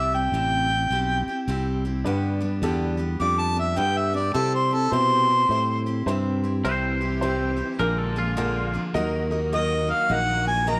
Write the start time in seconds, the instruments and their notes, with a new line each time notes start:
Already playing: fingered electric bass C2, steel-string acoustic guitar C3 G3 C4 E4 G4, harmonica E5
0.12 steel-string acoustic guitar C4 E4 G4, harmonica G5
0.32 fingered electric bass A1, steel-string acoustic guitar C3 G3 C4 E4 G4
0.69 steel-string acoustic guitar C4 E4 G4
0.90 fingered electric bass B1, steel-string acoustic guitar G3 C4 E4 G4
1.28 steel-string acoustic guitar C4 E4 G4
1.47 fingered electric bass C2, steel-string acoustic guitar C3 G3 C4 E4 G4
1.85 steel-string acoustic guitar C4 E4 G4
2.04 fingered electric bass G2, steel-string acoustic guitar G2 D3 G3 B3 D4 G4, upright piano D4 G4 B4
2.40 steel-string acoustic guitar G3 B3 D4 G4
2.62 fingered electric bass E2, steel-string acoustic guitar G2 D3 G3 B3 D4 G4, upright piano D4 G4 A4
2.97 steel-string acoustic guitar G3 B3 D4 G4
3.20 fingered electric bass F2, steel-string acoustic guitar G3 B3 D4 G4, upright piano D4 G4 D5, harmonica D6
3.40 harmonica A5
3.55 steel-string acoustic guitar G3 B3 D4 G4, harmonica E5
3.76 steel-string acoustic guitar G2 D3 G3 B3 D4 G4, fingered electric bass G2, upright piano D4 G4 B4, harmonica G5
3.97 harmonica E5
4.13 steel-string acoustic guitar G3 B3 D4 G4, harmonica D5
4.34 steel-string acoustic guitar C3 G3 C4 E4 G4, fingered electric bass C3, upright piano E4 G4 C5, harmonica A4
4.54 harmonica C5
4.71 steel-string acoustic guitar C4 E4 G4, harmonica A4
4.91 fingered electric bass B2, steel-string acoustic guitar C3 G3 C4 E4 G4, upright piano E4 G4 C5, harmonica C5
5.29 steel-string acoustic guitar C4 E4 G4
5.49 fingered electric bass A2, steel-string acoustic guitar G3 C4 E4 G4, upright piano E4 G4 C5
5.86 steel-string acoustic guitar C4 E4 G4
6.06 fingered electric bass G2, steel-string acoustic guitar C3 G3 C4 E4 G4, upright piano E4 G4 C5
6.44 steel-string acoustic guitar C4 E4 G4
6.64 fingered electric bass C2, steel-string acoustic guitar C3 G3 C4 E4 G4, string section G3 G4, upright piano E4 G4 C5, clean electric guitar C5
7.01 steel-string acoustic guitar C4 E4 G4
7.21 steel-string acoustic guitar C3 G3 C4 E4 G4, upright piano E4 G4 C5
7.57 steel-string acoustic guitar C4 E4 G4
7.79 fingered electric bass A#1, string section D3 G#3 A#3 F4, steel-string acoustic guitar F3 A#3 D4 G#4, upright piano D4 G#4 A#4, clean electric guitar A#4
7.98 clean electric guitar A4
8.16 steel-string acoustic guitar F3 A#3 D4 G#4, clean electric guitar F4
8.37 steel-string acoustic guitar A#2 D3 F3 A#3 D4 G#4, upright piano D4 G#4 A#4
8.73 steel-string acoustic guitar F3 A#3 D4 G#4
8.94 fingered electric bass D#2, steel-string acoustic guitar D#3 F#3 A#3 D#4 A#4, string section D#3 F#3 A#3 F#4, upright piano D#4 F#4 A#4 D#5
9.31 steel-string acoustic guitar A#3 D#4 A#4, upright piano D#4 F#4 A#4 D#5
9.53 steel-string acoustic guitar D#3 F#3 A#3 D#4 A#4, upright piano D#4 F#4 A#4 D#5, harmonica D#5
9.88 steel-string acoustic guitar A#3 D#4 A#4, harmonica F5
10.09 fingered electric bass A#1, steel-string acoustic guitar F#3 A#3 D#4 A#4, upright piano D#4 F#4 A#4 D#5, harmonica F#5
10.46 steel-string acoustic guitar A#3 D#4 A#4, harmonica G#5
10.67 steel-string acoustic guitar D#3 F#3 A#3 D#4 A#4, upright piano D#4 F#4 A#4 D#5, harmonica A#5